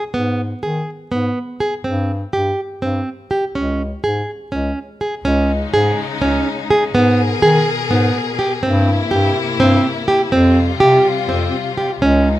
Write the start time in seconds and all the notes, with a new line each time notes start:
0.14 G#2 B3
0.63 D#3 G#4
1.11 G#2 B3
1.60 G#4
1.84 G2 C4
2.33 G2 G4
2.81 G2 C4
3.31 G4
3.54 C#2 C#4
4.04 G#2 G#4
4.52 C#2 C#4
5.01 G#4
5.24 C#2 C#3 G#3 C#4 D#4
5.72 G#2 G#4
6.21 C#2 C#4
6.70 G#4
6.93 G#2 B2 B3 G#4 A#4
7.41 D#3 G#4
7.90 G#2 B3
8.39 G4
8.63 G2 C3 A#3 C4 E4
9.11 G2 G4
9.60 G2 C4
10.08 G4
10.32 F2 C3 G3 C4 F4
10.80 C3 G4
11.28 F2 C4
11.77 G4
12.00 C#2 C#3 G#3 C#4 D#4